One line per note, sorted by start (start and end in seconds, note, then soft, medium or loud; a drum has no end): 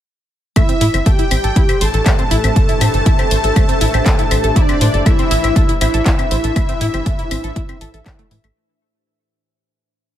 0.56 0.64 A1 loud
0.56 8.61 A2 medium
0.56 8.61 E3 medium
0.56 0.61 A3 loud
0.56 8.56 D4 medium
0.56 1.08 E4 loud
0.56 0.61 A4 medium
0.56 1.06 E5 loud
0.56 kick loud
0.56 closed hi-hat medium
0.56 claves medium
0.69 0.74 C4 medium
0.69 0.74 C5 medium
0.69 closed hi-hat soft
0.77 8.56 G4 medium
0.77 8.56 E5 medium
0.81 0.89 A2 medium
0.81 0.86 E4 loud
0.81 0.86 E5 medium
0.81 open hi-hat loud
0.94 1.01 G1 medium
0.94 0.99 C4 medium
0.94 0.99 C5 medium
0.94 closed hi-hat soft
0.94 claves medium
1.06 1.14 A1 loud
1.06 1.83 G4 loud
1.06 1.11 A4 medium
1.06 1.81 G5 loud
1.06 1.11 A5 medium
1.06 kick loud
1.06 closed hi-hat medium
1.10 8.56 C5 medium
1.19 1.24 E4 medium
1.19 1.24 E5 medium
1.19 closed hi-hat soft
1.31 1.39 A1 loud
1.31 1.36 C4 medium
1.31 1.36 C5 medium
1.31 open hi-hat loud
1.31 claves medium
1.44 1.52 A1 medium
1.44 1.52 A4 medium
1.44 1.52 A5 medium
1.44 closed hi-hat soft
1.56 1.64 A1 loud
1.56 1.61 E4 loud
1.56 1.61 E5 medium
1.56 kick loud
1.56 closed hi-hat medium
1.69 1.77 C4 medium
1.69 1.77 C5 medium
1.69 closed hi-hat medium
1.69 claves medium
1.81 1.89 A1 loud
1.81 4.58 A4 loud
1.81 1.86 C5 medium
1.81 4.56 A5 loud
1.81 1.86 C6 medium
1.81 open hi-hat loud
1.94 2.02 A1 medium
1.94 2.02 A4 medium
1.94 2.02 A5 medium
1.94 closed hi-hat soft
2.06 2.14 A1 loud
2.06 2.11 A3 loud
2.06 2.11 A4 medium
2.06 kick loud
2.06 clap loud
2.06 closed hi-hat medium
2.06 claves medium
2.19 2.24 C4 medium
2.19 2.24 C5 medium
2.19 closed hi-hat soft
2.31 2.39 A1 medium
2.31 2.36 E4 loud
2.31 2.36 E5 medium
2.31 open hi-hat loud
2.44 2.51 A1 medium
2.44 2.49 C4 medium
2.44 2.49 C5 medium
2.44 closed hi-hat medium
2.44 claves medium
2.56 2.64 A1 loud
2.56 2.61 A4 medium
2.56 2.61 A5 medium
2.56 kick loud
2.56 closed hi-hat medium
2.69 2.74 E4 medium
2.69 2.74 E5 medium
2.69 closed hi-hat soft
2.81 2.89 A2 medium
2.81 2.86 C4 medium
2.81 2.86 C5 medium
2.81 open hi-hat loud
2.81 claves medium
2.94 3.01 G1 medium
2.94 3.02 A4 medium
2.94 3.02 A5 medium
2.94 closed hi-hat soft
3.06 3.14 A1 loud
3.06 3.11 E4 loud
3.06 3.11 E5 medium
3.06 kick loud
3.06 closed hi-hat medium
3.19 3.27 C4 medium
3.19 3.27 C5 medium
3.19 closed hi-hat soft
3.19 claves medium
3.31 3.39 A1 medium
3.31 3.36 C5 medium
3.31 3.36 C6 medium
3.31 open hi-hat loud
3.44 3.52 A1 medium
3.44 3.52 A4 medium
3.44 3.52 A5 medium
3.44 closed hi-hat soft
3.56 3.64 A1 loud
3.56 3.61 A3 loud
3.56 3.61 A4 medium
3.56 kick loud
3.56 closed hi-hat medium
3.56 claves soft
3.69 3.74 C4 medium
3.69 3.74 C5 medium
3.69 closed hi-hat soft
3.81 3.89 A1 medium
3.81 3.86 E4 loud
3.81 3.86 E5 medium
3.81 open hi-hat loud
3.94 4.02 A1 medium
3.94 3.99 C4 medium
3.94 3.99 C5 medium
3.94 closed hi-hat soft
3.94 claves soft
4.06 4.14 A1 loud
4.06 4.11 A4 medium
4.06 4.11 A5 medium
4.06 kick loud
4.06 clap loud
4.06 closed hi-hat medium
4.19 4.24 E4 medium
4.19 4.24 E5 medium
4.19 closed hi-hat soft
4.31 4.39 A1 loud
4.31 4.36 C4 medium
4.31 4.36 C5 medium
4.31 open hi-hat loud
4.31 claves soft
4.44 4.51 A1 medium
4.44 4.52 A4 medium
4.44 4.52 A5 medium
4.44 closed hi-hat medium
4.56 4.64 A1 loud
4.56 5.02 D4 loud
4.56 4.61 E4 loud
4.56 5.02 D5 loud
4.56 4.61 E5 medium
4.56 kick loud
4.56 closed hi-hat medium
4.69 4.77 C4 medium
4.69 4.77 C5 medium
4.69 closed hi-hat soft
4.69 claves medium
4.81 4.89 A2 loud
4.81 4.86 C5 medium
4.81 4.86 C6 medium
4.81 open hi-hat loud
4.94 5.01 G1 medium
4.94 5.02 A4 medium
4.94 5.02 A5 medium
4.94 closed hi-hat soft
5.06 5.14 A1 loud
5.06 5.11 A3 loud
5.06 5.71 E4 loud
5.06 5.11 A4 medium
5.06 5.71 E5 loud
5.06 kick loud
5.06 closed hi-hat medium
5.06 claves medium
5.19 5.24 C4 medium
5.19 5.24 C5 medium
5.19 closed hi-hat soft
5.31 5.39 A1 medium
5.31 5.36 E4 loud
5.31 5.36 E5 medium
5.31 open hi-hat loud
5.44 5.51 A1 medium
5.44 5.49 C4 medium
5.44 5.49 C5 medium
5.44 closed hi-hat soft
5.44 claves soft
5.56 5.64 A1 loud
5.56 5.61 A4 medium
5.56 5.61 A5 medium
5.56 kick loud
5.56 closed hi-hat medium
5.69 5.74 E4 medium
5.69 5.74 E5 medium
5.69 closed hi-hat soft
5.81 5.89 A1 loud
5.81 5.86 C4 medium
5.81 8.46 E4 loud
5.81 5.86 C5 medium
5.81 8.46 E5 loud
5.81 open hi-hat loud
5.81 claves medium
5.94 6.01 A1 medium
5.94 6.02 A4 medium
5.94 6.02 A5 medium
5.94 closed hi-hat soft
6.06 6.14 A1 loud
6.06 6.11 E4 loud
6.06 6.11 E5 medium
6.06 kick loud
6.06 clap loud
6.06 closed hi-hat medium
6.19 6.27 C4 medium
6.19 6.27 C5 medium
6.19 closed hi-hat soft
6.19 claves soft
6.31 6.39 A1 loud
6.31 6.36 C5 medium
6.31 6.36 C6 medium
6.31 open hi-hat loud
6.44 6.51 A1 medium
6.44 6.52 A4 medium
6.44 6.52 A5 medium
6.44 closed hi-hat soft
6.56 6.64 A1 loud
6.56 6.61 A3 loud
6.56 6.61 A4 medium
6.56 kick loud
6.56 closed hi-hat medium
6.56 claves medium
6.69 6.74 C4 medium
6.69 6.74 C5 medium
6.69 closed hi-hat soft
6.81 6.89 A2 medium
6.81 6.86 E4 loud
6.81 6.86 E5 medium
6.81 open hi-hat loud
6.94 7.01 G1 medium
6.94 6.99 C4 medium
6.94 6.99 C5 medium
6.94 closed hi-hat soft
6.94 claves soft
7.06 7.14 A1 loud
7.06 7.11 A4 medium
7.06 7.11 A5 medium
7.06 kick loud
7.06 closed hi-hat medium
7.19 7.24 E4 medium
7.19 7.24 E5 medium
7.19 closed hi-hat soft
7.31 7.39 A1 medium
7.31 7.36 C4 medium
7.31 7.36 C5 medium
7.31 open hi-hat loud
7.31 claves medium
7.44 7.51 A1 medium
7.44 7.52 A4 medium
7.44 7.52 A5 medium
7.44 closed hi-hat soft
7.56 7.64 A1 loud
7.56 7.61 E4 loud
7.56 7.61 E5 medium
7.56 kick loud
7.56 closed hi-hat medium
7.69 7.77 C4 medium
7.69 7.77 C5 medium
7.69 closed hi-hat soft
7.69 claves medium
7.81 7.89 A1 medium
7.81 7.89 A4 medium
7.81 7.89 A5 medium
7.81 open hi-hat loud
7.94 8.01 A1 medium
7.94 7.99 A4 medium
7.94 7.99 A5 medium
7.94 closed hi-hat soft
8.06 8.14 A1 medium
8.06 8.11 A4 medium
8.06 8.11 A5 medium
8.06 kick loud
8.06 clap loud
8.06 closed hi-hat medium
8.06 claves medium
8.19 8.27 A3 loud
8.19 8.27 A4 medium
8.19 closed hi-hat soft
8.31 8.39 A2 loud
8.31 8.36 E3 medium
8.31 8.36 E4 medium
8.31 open hi-hat loud
8.44 8.51 A1 medium
8.44 8.47 A3 medium
8.44 8.47 A4 medium
8.44 closed hi-hat soft
8.44 claves medium